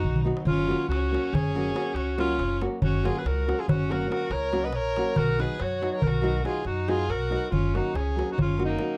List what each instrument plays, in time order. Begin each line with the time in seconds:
Already playing: violin D#4, alto saxophone F#4
0.03 upright bass B1, darbuka dum
0.16 darbuka dum
0.24 nylon-string guitar F#3 B3 D#4 F#4, darbuka tek
0.37 darbuka tek
0.45 upright bass F#1, violin C#4, alto saxophone F4, darbuka dum
0.59 darbuka tek
0.67 nylon-string guitar F#3 A#3 C#4 F#4
0.71 darbuka tek
0.82 darbuka tek
0.89 upright bass C#2, violin C#4, alto saxophone F#4, darbuka tek
1.03 darbuka tek
1.11 nylon-string guitar F#3 A#3 C#4 F#4, darbuka tek
1.25 darbuka tek
1.33 upright bass F#1, violin C#4, alto saxophone G#4, darbuka dum
1.45 darbuka tek
1.55 nylon-string guitar F#3 A#3 C#4 F#4, darbuka tek
1.67 darbuka tek
1.74 nylon-string guitar F#3 A#3 C#4 F#4, darbuka tek
1.86 darbuka tek
1.94 upright bass C#2, violin C#4, alto saxophone F#4, darbuka tek
2.18 nylon-string guitar F#3 A#3 C#4 F#4, violin C#4, alto saxophone F4, darbuka tek
2.29 darbuka tek
2.38 upright bass F#1, darbuka tek
2.61 nylon-string guitar F#3 A#3 C#4 F#4, darbuka tek
2.82 upright bass F#1, violin C#4, alto saxophone F#4, darbuka dum
2.94 darbuka tek
3.03 nylon-string guitar F#3 A#3 C#4 F#4, violin F4, alto saxophone G#4, darbuka tek
3.16 violin G#4, alto saxophone B4, darbuka tek
3.24 upright bass C#2, violin F#4, alto saxophone A#4, darbuka tek
3.39 darbuka tek
3.46 nylon-string guitar F#3 A#3 C#4 F#4, darbuka tek
3.59 violin F4, alto saxophone G#4, darbuka tek
3.68 upright bass F#1, violin C#4, alto saxophone F#4, darbuka dum
3.89 nylon-string guitar F#3 A#3 C#4 F#4, violin F#4, alto saxophone A#4, darbuka tek
4.02 darbuka tek
4.09 nylon-string guitar F#3 A#3 C#4 F#4, alto saxophone A#4, darbuka tek
4.13 violin F#4
4.22 darbuka tek
4.30 upright bass C#2, violin A#4, alto saxophone C#5, darbuka tek
4.52 nylon-string guitar F#3 A#3 C#4 F#4, darbuka tek
4.63 violin B4, alto saxophone D#5, darbuka tek
4.73 upright bass A#1, violin A#4, alto saxophone C#5, darbuka tek
4.96 nylon-string guitar F#3 A#3 C#4 F#4, darbuka tek
5.16 upright bass B1, violin F#4, alto saxophone A#4, darbuka dum
5.28 darbuka tek
5.38 nylon-string guitar F#3 B3 D#4 F#4, violin G#4, alto saxophone B4, darbuka tek
5.60 upright bass F#2, violin F#4, alto saxophone C#5, darbuka tek
5.71 darbuka tek
5.81 nylon-string guitar F#3 B3 D#4 F#4, darbuka tek
5.92 alto saxophone C#5, darbuka tek
5.97 violin A#4
6.02 upright bass B1, alto saxophone A#4, darbuka dum
6.07 violin F#4
6.14 darbuka tek
6.22 nylon-string guitar F#3 B3 D#4 F#4, darbuka tek
6.35 darbuka tek
6.43 nylon-string guitar F#3 B3 D#4 F#4, alto saxophone G#4, darbuka tek
6.48 violin F4
6.56 darbuka tek
6.65 upright bass F#2, violin D#4, alto saxophone F#4, darbuka tek
6.88 nylon-string guitar F#3 B3 D#4 F#4, violin F4, alto saxophone G#4, darbuka tek
6.99 darbuka tek
7.08 upright bass B1, violin F#4, alto saxophone A#4, darbuka tek
7.30 nylon-string guitar F#3 B3 D#4 F#4, darbuka tek
7.50 upright bass F#1, violin C#4, alto saxophone F4, darbuka dum
7.64 darbuka tek
7.73 nylon-string guitar F#3 A#3 C#4 F#4, violin D#4, alto saxophone F#4, darbuka tek
7.85 darbuka tek
7.94 upright bass C#2, violin C#4, alto saxophone G#4, darbuka tek
8.07 darbuka tek
8.16 nylon-string guitar F#3 A#3 C#4 F#4, darbuka tek
8.32 violin D#4, alto saxophone F#4
8.38 upright bass F#1, violin C#4, alto saxophone F4, darbuka dum
8.50 darbuka tek
8.57 nylon-string guitar F#3 A#3 C#4 F#4, darbuka tek
8.64 violin A#3, alto saxophone D#4
8.70 darbuka tek
8.78 nylon-string guitar F#3 A#3 C#4 F#4, darbuka tek